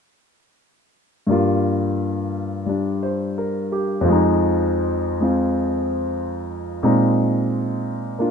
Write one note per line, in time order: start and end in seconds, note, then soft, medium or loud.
1.27 4.04 G2 soft
1.27 2.65 G3 soft
1.27 4.06 A#3 soft
1.32 4.07 F4 medium
2.66 4.05 G3 soft
2.66 4.06 D4 soft
3.03 3.51 C5 soft
3.38 3.91 A#4 soft
3.72 4.20 G4 soft
4.01 6.80 F2 medium
4.01 6.82 F3 soft
4.09 5.19 G#3 soft
4.09 6.83 D#4 medium
5.20 6.82 G#3 soft
5.20 6.82 C4 soft
5.20 6.83 F4 soft
6.83 8.31 A#2 soft
6.83 8.31 G#3 soft
6.83 8.31 C4 soft
6.83 8.31 D#4 medium
8.19 8.31 A#3 soft
8.19 8.31 D4 soft
8.19 8.31 F4 soft